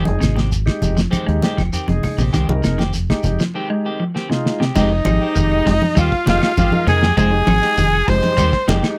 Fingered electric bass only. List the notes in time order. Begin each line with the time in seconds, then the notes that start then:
0.08 F1
0.22 G#1
0.82 F1
1.28 D#2
1.58 F1
1.88 F1
2.18 A#1
2.34 C2
2.49 C2
2.64 F1
3.24 F1
4.76 F1
5.06 G#1
5.37 F1
5.67 F1
5.97 D#2
6.27 F1
6.58 G#1
6.87 F2
7.17 F1
7.48 G#1
7.78 F1
8.08 F1
8.38 D#2
8.68 F1